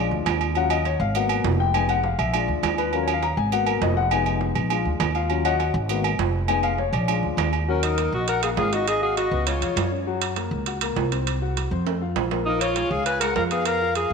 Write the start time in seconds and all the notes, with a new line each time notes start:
Already playing: G#3 D4 F4
0.11 D2
0.26 D#2, low timbale, low agogo
0.41 low agogo
0.55 F#3 C#4 F4 F#5, low agogo
0.70 D#5, low agogo
0.85 C#5, low timbale, low agogo
1.00 G#1 F5
1.15 A#3 B3 F#4 F#5, low agogo
1.29 low agogo
1.44 F1, low timbale
1.60 G5
1.74 G#3 B3 D#4 G#5, low agogo
1.89 F#5, low agogo
2.04 F5, low timbale
2.19 A#1 E5, low agogo
2.33 G#3 D4 F4 D5, low agogo
2.48 D2
2.63 D#2, low timbale, low agogo
2.78 B4, low agogo
2.93 F#3 C#4 F4 A#4, low agogo
3.03 C#5
3.08 low agogo
3.13 F5
3.22 A#5, low timbale, low agogo
3.37 G#1 G#5
3.52 A#3 B3 F#4 F#5, low agogo
3.67 A#4, low agogo
3.81 F1 D#5, low timbale
3.97 F#5
4.11 G#3 B3 D#4 G#5, low agogo
4.26 low agogo
4.41 low timbale
4.56 A#1, low agogo
4.70 G#3 D4 F4, low agogo
4.85 D2
5.00 D#2, low timbale, low agogo
5.15 F4 F5, low agogo
5.30 F#3 C#4 F4, low agogo
5.45 F#4 C#5 D#5 F#5, low agogo
5.60 low timbale, low agogo
5.74 G#1
5.89 A#3 B3 F#4, low agogo
6.04 low agogo
6.19 F1, low timbale
6.48 G#3 B3 D#4 G#5, low agogo
6.63 F5, low agogo
6.78 C#5, low timbale
6.92 A#1 D5, low agogo
7.07 G#3 D4 F4, low agogo
7.23 D2
7.37 D#2, low timbale, low agogo
7.53 low agogo
7.68 F#3 C#4 F#4 A#4
7.83 D#4 A#4, high timbale
7.98 A#3 A#4, high timbale, low timbale
8.12 A#1 F#4 D#5
8.28 F#4 A#4 F#5, high timbale
8.43 A#3 G#4 A#4 F5, high timbale
8.57 G#1 G#4 F5, low timbale
8.73 D#4 F#4 D#5, high timbale
8.88 G#4 D#5, high timbale
9.02 F#4 G#4 F5 F#5
9.17 F#4 D#5, high timbale, low timbale
9.31 C#2 B3 B4
9.47 G#3 F4 G#4 C#5, high timbale
9.61 F2 F4 F5, high timbale
9.76 F#2, high timbale, low timbale
9.92 C#4 C#5
10.07 F#3 F#4
10.22 high timbale
10.36 A#3 A#4, high timbale, low timbale
10.51 C#2
10.66 F#4 F#5, high timbale
10.81 A#3 A#4, high timbale
10.96 C2, low timbale
11.12 C4 C5, high timbale
11.27 high timbale
11.42 F#4 F#5
11.57 high timbale, low timbale
11.71 F2 C4 C5
11.87 A3 A4, high timbale
12.02 F4 F5
12.16 A#1, low timbale
12.31 A#3 A#4, low timbale
12.45 F3 D#4 F4 A#4
12.60 F4 C#5, high timbale
12.76 G#3 G#4, high timbale, low timbale
12.91 C#2 G#4 F5
13.06 F4 B4 F5 G#5, high timbale
13.20 G#3 G#4 A#4 F#5, high timbale
13.36 F2 A#4 F5, low timbale
13.51 B3 G#4 B4 F5, high timbale
13.65 A#4 F5, high timbale
13.82 F4 F5
13.95 G#4 F5, high timbale, low timbale